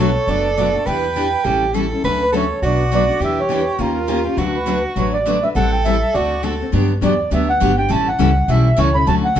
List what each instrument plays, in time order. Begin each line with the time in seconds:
Already playing: upright bass B1, soprano saxophone A4
0.00 steel-string acoustic guitar F#4 B4, accordion C#5
0.27 upright bass F#1, steel-string acoustic guitar B2 F#3 A3 D4 F#4 B4, accordion D5
0.57 steel-string acoustic guitar B2 F#3 A3 D4 F#4 B4, accordion D5
0.73 steel-string acoustic guitar A3 D4 F#4
0.86 upright bass E2, steel-string acoustic guitar E3 G3 B3 D4 E4 G4 B4, soprano saxophone B4, accordion G5
1.16 steel-string acoustic guitar E3 G3 B3 D4 E4 G4 B4
1.44 upright bass A1, steel-string acoustic guitar E3 G3 C#4 E4 A4, soprano saxophone G4
1.73 steel-string acoustic guitar E3 G3 C#4 E4 A4, soprano saxophone A4
1.91 steel-string acoustic guitar C#4 E4 A4
2.04 upright bass D2, steel-string acoustic guitar D3 F#3 A3 C#4 F#4 A4, soprano saxophone B4
2.22 accordion B4
2.32 steel-string acoustic guitar D3 F#3 A3 C#4 F#4 A4, soprano saxophone A4, accordion C#5
2.62 upright bass B1, steel-string acoustic guitar B2 F#3 A3 D4 F#4 B4, soprano saxophone F#4, accordion D5
2.92 steel-string acoustic guitar B2 F#3 A3 D4 F#4 B4, accordion D5
3.08 steel-string acoustic guitar A3 D4 F#4
3.20 upright bass E2, steel-string acoustic guitar E3 G3 B3 D4 E4 G4 B4, soprano saxophone G4
3.24 accordion E5
3.40 accordion C#5
3.49 steel-string acoustic guitar E3 G3 B3 D4 E4 G4 B4
3.78 upright bass D#2, steel-string acoustic guitar D#3 A#3 C#4 G4 A#4, soprano saxophone F4, accordion A#4
4.08 steel-string acoustic guitar D#3 A#3 C#4 G4 A#4
4.24 steel-string acoustic guitar C#4 G4 A#4
4.37 upright bass D2, steel-string acoustic guitar D3 F#3 A3 D4 F#4 B4, soprano saxophone F#4
4.55 accordion B4
4.66 steel-string acoustic guitar D3 F#3 A3 D4 F#4 B4
4.96 upright bass A1, steel-string acoustic guitar D3 F#3 A3 D4 F#4 B4, accordion C#5
5.13 accordion D5
5.25 steel-string acoustic guitar D3 F#3 A3 D4 F#4 B4
5.43 steel-string acoustic guitar A3 D4 F#4 B4, accordion E5
5.55 upright bass A1, steel-string acoustic guitar E3 G3 C4 E4 A4, soprano saxophone A4, accordion F#5
5.73 accordion G5
5.85 steel-string acoustic guitar E3 G3 C4 E4 A4, accordion E5
6.14 upright bass D2, steel-string acoustic guitar D3 A3 C4 F#4 A4, soprano saxophone F#4, accordion D5
6.43 steel-string acoustic guitar D3 A3 C4 F#4 A4, soprano saxophone A4
6.60 steel-string acoustic guitar C4 F#4 A4
6.72 upright bass G2, steel-string acoustic guitar D3 F#3 B3 D4 G4
7.01 upright bass E2, steel-string acoustic guitar D3 F#3 B3 D4 G4, accordion D5
7.31 upright bass D2, steel-string acoustic guitar D3 F#3 B3 D4 G4, accordion E5
7.50 accordion F#5
7.60 upright bass G1, steel-string acoustic guitar D3 F#3 B3 D4 G4
7.77 steel-string acoustic guitar B3 D4 G4, accordion G5
7.89 upright bass A1, steel-string acoustic guitar E3 G3 C#4 E4 A4, accordion A5
8.08 accordion F#5
8.19 upright bass C#2, steel-string acoustic guitar E3 G3 C#4 E4 A4
8.48 upright bass B1, steel-string acoustic guitar E3 G3 C#4 E4 A4, accordion E5
8.77 upright bass C#2, steel-string acoustic guitar E3 G3 C#4 E4 A4, accordion C#5
8.94 steel-string acoustic guitar C#4 E4 A4, accordion B5
9.07 upright bass D2, steel-string acoustic guitar D3 F#3 A3 C#4 F#4 A4, accordion A5
9.25 accordion F#5
9.35 upright bass B1, steel-string acoustic guitar D3 F#3 A3 C#4 F#4